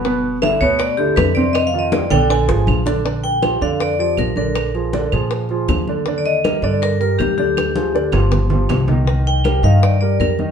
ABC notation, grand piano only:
X:1
M:4/4
L:1/8
Q:1/4=160
K:Bbmix
V:1 name="Grand piano"
[=B,,=B,=B]2 [D,D=E] [B,,B,B]2 [D,DE]2 [C,Cc]- | [C,Cc] [E,EF]2 [D,Dd] [D,Dd] [F,FA]2 [D,Dd] | [K:Bb] [D,Dd]2 [F,FG] [D,Dd]2 [F,FG]2 [D,Dd]- | [D,Dd] [F,F_A] [D,Dd] [F,FA]2 [F,FA]2 [D,Dd] |
[D,Dd]2 [G,GB] [D,Dd]2 [G,GB]2 [D,Dd]- | [D,Dd] [F,F_A] [D,Dd] [F,FG]2 [F,FG]2 [E,Ee] | [E,Ee]2 [G,GB] [E,Ee]2 [G,GB]2 [E,Ee] |]